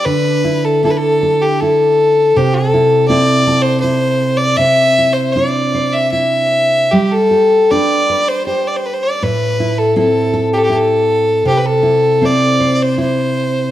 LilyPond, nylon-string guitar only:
\new Staff \with { instrumentName = "Nylon-string guitar" } { \time 3/4 \key c \lydian \tempo 4 = 79 d8 e'8 <d' e' a'>8 a'8 e'4 | c8 e'8 <c' e' a'>8 a'8 e'4 | c8 e'8 <d' e' c''>8 c''8 e'4 | g8 g'8 <d' g' b'>8 b'8 g'4 |
a,8 e'8 <c' e' a'>8 a'8 e'4 | c8 e'8 <c' e' c''>8 c''8 e'4 | }